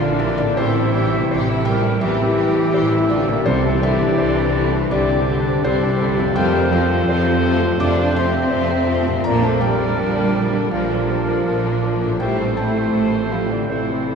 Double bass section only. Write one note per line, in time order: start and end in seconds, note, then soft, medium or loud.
0.00 0.48 A#1 medium
0.57 1.21 A1 medium
1.30 1.93 A1 medium
2.02 2.65 A1 medium
2.74 3.37 A1 medium
3.46 4.10 C2 medium
4.19 4.83 C2 medium
4.92 5.56 C2 medium
5.64 6.27 C2 medium
6.36 6.99 F2 loud
7.08 7.72 F2 medium
7.81 8.44 F2 medium
8.53 9.17 F2 medium
9.26 9.91 A#1 medium
9.99 10.63 A#1 medium
10.72 11.37 A#1 medium
11.46 12.11 A#1 medium
12.21 12.86 A1 medium
12.95 13.60 A1 medium
13.70 14.15 A1 medium